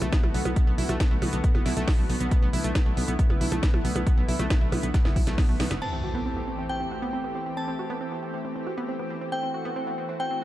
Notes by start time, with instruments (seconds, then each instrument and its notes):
0.02 fm bass B1, analog synth pad D3 A3 B3 F#4, synth arpeggio sound A3, closed hi-hat, percussion blips
0.12 synth arpeggio sound B3, kick, snare, closed hi-hat
0.23 fm bass B1, analog synth pad D3 A3 B3 F#4, synth arpeggio sound A3, percussion blips
0.34 fm bass B1, synth arpeggio sound B3, open hi-hat
0.45 fm bass B1, analog synth pad D3 A3 B3 F#4, synth arpeggio sound B3, closed hi-hat, percussion blips
0.56 analog synth pad D3 A3 B3 F#4, synth arpeggio sound B3, kick, closed hi-hat
0.67 fm bass B1, synth arpeggio sound B3
0.78 fm bass B1, analog synth pad D3 A3 B3 F#4, synth arpeggio sound E4, open hi-hat
0.89 fm bass B1, synth arpeggio sound A3, closed hi-hat, percussion blips
1.00 analog synth pad D3 A3 B3 F#4, synth arpeggio sound B3, kick, snare, closed hi-hat
1.11 fm bass B1, synth arpeggio sound A3
1.22 fm bass B1, analog synth pad D3 A3 B3 F#4, synth arpeggio sound B3, open hi-hat, percussion blips
1.33 fm bass B1, synth arpeggio sound B3, closed hi-hat
1.44 analog synth pad D3 A3 B3 F#4, synth arpeggio sound B3, kick, closed hi-hat
1.55 fm bass F#1, analog synth pad D3 A3 B3 F#4, synth arpeggio sound B3, percussion blips
1.66 fm bass B1, synth arpeggio sound E4, snare, open hi-hat
1.77 fm bass B1, analog synth pad D3 A3 B3 F#4, synth arpeggio sound A3, closed hi-hat
1.88 synth arpeggio sound B3, kick, snare, open hi-hat
1.99 fm bass B1, analog synth pad D3 A3 B3 F#4, synth arpeggio sound A3
2.10 fm bass B1, synth arpeggio sound B3, open hi-hat
2.20 fm bass B1, analog synth pad D3 A3 B3 F#4, synth arpeggio sound B3, closed hi-hat
2.31 analog synth pad D3 A3 B3 E4, synth arpeggio sound B3, kick, closed hi-hat
2.42 fm bass B1, synth arpeggio sound B3
2.53 fm bass B1, analog synth pad D3 A3 B3 E4, synth arpeggio sound E4, open hi-hat
2.64 fm bass B1, synth arpeggio sound A3, closed hi-hat
2.75 analog synth pad D3 A3 B3 E4, synth arpeggio sound B3, kick, snare, closed hi-hat
2.86 fm bass B1, synth arpeggio sound A3
2.97 fm bass B1, analog synth pad D3 A3 B3 E4, synth arpeggio sound B3, open hi-hat
3.08 fm bass B1, synth arpeggio sound B3, closed hi-hat
3.19 analog synth pad D3 A3 B3 E4, synth arpeggio sound B3, kick, closed hi-hat
3.30 fm bass F#1, analog synth pad D3 A3 B3 E4, synth arpeggio sound B3, percussion blips
3.41 fm bass B1, synth arpeggio sound E4, open hi-hat
3.52 fm bass B1, analog synth pad D3 A3 B3 E4, synth arpeggio sound A3, closed hi-hat, percussion blips
3.63 synth arpeggio sound B3, kick, snare, closed hi-hat
3.74 fm bass B1, analog synth pad D3 A3 B3 E4, synth arpeggio sound A3, percussion blips
3.85 fm bass B1, synth arpeggio sound B3, open hi-hat
3.96 fm bass B1, analog synth pad D3 A3 B3 E4, synth arpeggio sound B3, closed hi-hat, percussion blips
4.06 analog synth pad D3 A3 B3 E4, synth arpeggio sound B3, kick, closed hi-hat
4.18 fm bass B1, synth arpeggio sound B3
4.28 fm bass B1, analog synth pad D3 A3 B3 E4, synth arpeggio sound E4, open hi-hat
4.39 fm bass B1, synth arpeggio sound A3, closed hi-hat, percussion blips
4.50 analog synth pad D3 A3 B3 E4, kick, snare, closed hi-hat
4.61 fm bass B1, synth arpeggio sound A3
4.72 fm bass B1, analog synth pad D3 A3 B3 E4, synth arpeggio sound B3, open hi-hat, percussion blips
4.83 fm bass B1, synth arpeggio sound B3, closed hi-hat
4.94 analog synth pad D3 A3 B3 E4, synth arpeggio sound B3, kick, snare, closed hi-hat
5.05 fm bass F#1, analog synth pad D3 A3 B3 E4, synth arpeggio sound B3, snare, percussion blips
5.16 fm bass B1, synth arpeggio sound E4, kick, open hi-hat
5.27 fm bass B1, analog synth pad D3 A3 B3 E4, synth arpeggio sound A3, snare, closed hi-hat
5.38 synth arpeggio sound B3, kick, snare, open hi-hat
5.49 fm bass B1, analog synth pad D3 A3 B3 E4, synth arpeggio sound A3
5.60 fm bass B1, synth arpeggio sound B3, snare, open hi-hat
5.71 fm bass F#1, analog synth pad D3 A3 B3 E4, synth arpeggio sound B3, snare, closed hi-hat
5.82 analog synth pad E3 A3 C4 G4, synth arpeggio sound C4, synth bell A5, crash, impact
5.93 synth arpeggio sound C4
6.04 analog synth pad E3 A3 C4 G4, synth arpeggio sound F#4
6.15 synth arpeggio sound B3
6.26 analog synth pad E3 A3 C4 G4, synth arpeggio sound C4
6.37 synth arpeggio sound B3
6.47 analog synth pad E3 A3 C4 G4, synth arpeggio sound C4
6.59 synth arpeggio sound C4
6.69 analog synth pad E3 A3 C4 G4, synth arpeggio sound C4, synth bell G5
6.80 analog synth pad E3 A3 C4 G4, synth arpeggio sound C4
6.91 synth arpeggio sound F#4
7.02 analog synth pad E3 A3 C4 G4, synth arpeggio sound B3
7.13 synth arpeggio sound C4
7.24 analog synth pad E3 A3 C4 G4, synth arpeggio sound B3
7.35 synth arpeggio sound C4
7.46 analog synth pad E3 A3 C4 G4, synth arpeggio sound C4
7.57 analog synth pad E3 A3 C4 G4, synth arpeggio sound C4, synth bell A5
7.68 synth arpeggio sound C4
7.79 analog synth pad E3 A3 C4 G4, synth arpeggio sound F#4
7.90 synth arpeggio sound B3
8.01 analog synth pad E3 A3 C4 G4, synth arpeggio sound C4
8.12 synth arpeggio sound B3
8.23 analog synth pad E3 A3 C4 G4, synth arpeggio sound C4
8.34 synth arpeggio sound C4
8.45 analog synth pad E3 A3 C4 G4, synth arpeggio sound C4
8.56 analog synth pad E3 A3 C4 G4, synth arpeggio sound C4
8.67 synth arpeggio sound F#4
8.77 analog synth pad E3 A3 C4 G4, synth arpeggio sound B3
8.88 synth arpeggio sound C4
8.99 analog synth pad E3 A3 C4 G4, synth arpeggio sound B3
9.10 synth arpeggio sound C4
9.21 analog synth pad E3 A3 C4 G4, synth arpeggio sound C4
9.32 analog synth pad E3 A3 C4 F#4, synth arpeggio sound C4, synth bell G5
9.43 synth arpeggio sound C4
9.54 analog synth pad E3 A3 C4 F#4, synth arpeggio sound F#4
9.65 synth arpeggio sound B3
9.76 analog synth pad E3 A3 C4 F#4, synth arpeggio sound C4
9.87 synth arpeggio sound B3
9.98 analog synth pad E3 A3 C4 F#4, synth arpeggio sound C4
10.09 synth arpeggio sound C4
10.20 analog synth pad E3 A3 C4 F#4, synth arpeggio sound C4, synth bell G5
10.31 analog synth pad E3 A3 C4 F#4, synth arpeggio sound C4